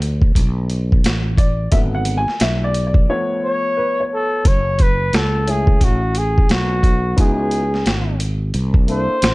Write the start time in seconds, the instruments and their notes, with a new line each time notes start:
Already playing: fretless electric bass D2
0.02 closed hi-hat
0.22 kick
0.35 fretless electric bass B1, kick, closed hi-hat
0.70 closed hi-hat
0.92 kick
1.04 fretless electric bass A1, snare, closed hi-hat
1.38 upright piano D5, kick, closed hi-hat
1.71 fretless electric bass G#1, upright piano D3 F#3 B3 E5, kick, closed hi-hat
1.95 upright piano F#5
2.05 closed hi-hat
2.17 upright piano G#5
2.28 snare
2.40 fretless electric bass B1, upright piano E5, snare, closed hi-hat
2.64 upright piano D5
2.74 closed hi-hat
2.87 upright piano D5
2.94 kick
3.09 upright piano F3 A3 B3 C#5
3.44 flugelhorn C#5
3.77 upright piano B4
4.00 upright piano C#5
4.14 flugelhorn A4
4.45 fretless electric bass F#1, flugelhorn C#5, kick, closed hi-hat
4.79 flugelhorn B4, kick, closed hi-hat
5.13 fretless electric bass C#2, flugelhorn A4, snare, closed hi-hat
5.47 upright piano A3 C#4 E4 G#4, flugelhorn G#4, closed hi-hat
5.67 kick
5.81 fretless electric bass A1, flugelhorn F#4, kick, closed hi-hat
6.15 flugelhorn G#4, closed hi-hat
6.38 kick
6.49 fretless electric bass B1, flugelhorn F#4, snare, closed hi-hat
6.83 kick, closed hi-hat
7.17 fretless electric bass C#2, upright piano B3 D#4 E4 F#4, flugelhorn G#4, kick, closed hi-hat
7.51 closed hi-hat
7.74 snare
7.86 fretless electric bass G#1, snare, closed hi-hat
8.20 closed hi-hat
8.54 fretless electric bass C2, closed hi-hat
8.74 kick
8.87 upright piano A#3 D4 E4 A4, flugelhorn C5, closed hi-hat
9.22 fretless electric bass A1, snare, closed hi-hat